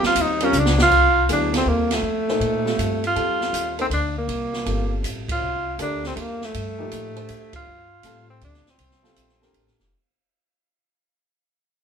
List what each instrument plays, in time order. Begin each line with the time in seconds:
Already playing: grand piano G3 C4 F4 A#4
0.03 tenor saxophone F4, muted upright bass stroke, snare
0.15 upright bass D#2, hi-hat pedal, ride
0.22 tenor saxophone D#4
0.40 grand piano G3 C4 F4 A#4, tenor saxophone C#4, ride
0.53 upright bass C#2, hi-hat pedal
0.59 tenor saxophone D4
0.65 snare
0.78 snare
0.83 tenor saxophone F4
0.91 kick, crash
1.28 upright bass D2, grand piano F#3 B3 E4 G#4, hi-hat pedal, ride
1.33 tenor saxophone D4
1.53 grand piano G3 C4 F4 A4, tenor saxophone C4, snare, ride
1.66 upright bass D#2, tenor saxophone A#3
1.90 tenor saxophone A3, snare, ride
2.02 upright bass F2
2.28 grand piano A#2 D#4 A4 C5, snare
2.40 upright bass A#2, ride
2.65 grand piano G3 C4 F4 A4, snare
2.78 upright bass G2, hi-hat pedal, ride
3.04 tenor saxophone F4, ride
3.15 upright bass F2, grand piano G3 C4 F4 A4, ride
3.41 snare
3.53 upright bass D#2, hi-hat pedal, ride
3.78 grand piano A#3 D#4 A4 C5, tenor saxophone C4, ride
3.90 upright bass D2, tenor saxophone D4, ride
4.18 tenor saxophone A#3
4.28 upright bass C2, ride
4.53 snare
4.65 upright bass G1, grand piano G3 C4 F4 A4, ride
5.03 upright bass A1, hi-hat pedal, ride
5.28 tenor saxophone F4, kick, ride
5.41 upright bass C2
5.78 upright bass D2, grand piano D4 G4 A4 A#4, tenor saxophone D4, hi-hat pedal, ride
6.04 tenor saxophone C4, snare
6.16 upright bass F2, tenor saxophone A3, ride
6.20 tenor saxophone A#3
6.41 tenor saxophone A3, snare
6.54 upright bass G2, ride
6.78 grand piano A#2 F3 D#4 G4
6.91 upright bass A2, hi-hat pedal, ride
7.15 grand piano D4 G4 A4 C5, ride
7.29 upright bass F2, hi-hat pedal, ride
7.53 tenor saxophone F4, kick, ride
7.67 upright bass G2
8.03 upright bass A2, grand piano G3 C4 F4 A4, hi-hat pedal, ride
8.30 tenor saxophone C4
8.41 upright bass D2, tenor saxophone D4, ride
8.54 snare
8.66 tenor saxophone C4, snare
8.78 upright bass C2, ride
8.91 snare
9.02 grand piano G3 C4 F4 A4, snare
9.16 upright bass A#1, hi-hat pedal, ride
9.29 snare
9.41 grand piano D4 G4 A4 A#4, snare
9.53 upright bass A1, ride
9.67 upright bass G1, snare
9.79 upright bass F1, snare